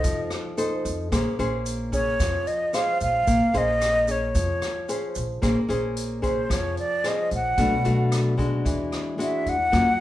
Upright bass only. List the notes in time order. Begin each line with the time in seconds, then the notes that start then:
0.04 F2
0.85 F2
1.12 A#1
1.39 A#1
2.20 F2
3.01 A#1
3.27 A#1
3.54 A#1
4.35 F2
5.16 A#1
5.43 A#1
5.70 A#1
6.50 F2
7.31 A#1
7.58 B1
7.85 B1
8.65 E2
9.46 E2
9.73 F#2